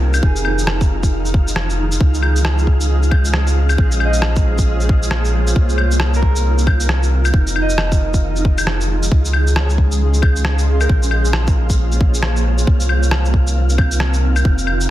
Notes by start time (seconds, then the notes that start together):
Already playing: C2 C4 D#4 F4 A#4 F5
0.14 claves, shaker
0.22 F1 F4 G#4, kick
0.36 shaker
0.45 claves
0.59 shaker
0.67 cross-stick
0.81 kick, shaker
1.03 kick, shaker
1.25 shaker
1.34 kick
1.48 shaker
1.56 cross-stick
1.70 shaker
1.92 shaker
2.01 C#2 C#4 C5 D#5 F5, kick
2.14 shaker
2.23 claves
2.36 shaker
2.45 cross-stick
2.58 shaker
2.67 kick
2.81 shaker
3.03 shaker
3.11 kick, claves
3.25 shaker
3.34 cross-stick
3.47 shaker
3.69 claves, shaker
3.78 A#1 A#3 F4 C5 C#5, kick
3.92 shaker
4.00 claves
4.05 D#5
4.14 shaker
4.22 cross-stick
4.36 kick, shaker
4.58 kick, shaker
4.80 shaker
4.89 kick
5.03 shaker
5.11 cross-stick
5.25 shaker
5.47 shaker
5.56 C2 C4 D#4 A#4, kick
5.69 shaker
5.78 claves
5.91 shaker
6.00 cross-stick
6.14 A#4, shaker
6.23 kick
6.36 shaker
6.58 shaker
6.67 kick, claves
6.80 shaker
6.89 cross-stick
7.03 shaker
7.25 claves, shaker
7.33 F1 F4 G#4, kick
7.47 shaker
7.56 claves
7.62 D#5
7.70 shaker
7.78 cross-stick, claves
7.92 kick, shaker
8.14 kick, shaker
8.36 shaker
8.45 kick
8.58 claves, shaker
8.67 cross-stick
8.81 shaker
9.03 shaker
9.10 C#2 C#4 F4 D#5 F5 C6, kick
9.25 shaker
9.33 claves
9.47 shaker
9.56 cross-stick
9.61 C#5
9.70 shaker
9.78 kick
9.92 shaker
10.14 shaker
10.22 kick, claves
10.36 shaker
10.45 cross-stick
10.58 shaker
10.81 A#4, claves, shaker
10.89 A#1 A#3 F4 C5 C#5, kick
11.03 shaker
11.11 claves
11.25 shaker
11.33 cross-stick
11.47 kick, shaker
11.70 kick, shaker
11.92 shaker
12.01 kick
12.14 shaker
12.23 cross-stick
12.36 shaker
12.58 shaker
12.67 C2 C4 D#4 A#4, kick
12.80 shaker
12.89 claves
13.03 shaker
13.11 cross-stick
13.25 shaker
13.34 kick
13.47 shaker
13.69 shaker
13.78 kick, claves
13.92 shaker
14.00 cross-stick
14.14 shaker
14.36 claves, shaker
14.45 F1 F4 G#4, kick
14.58 shaker
14.67 claves
14.81 shaker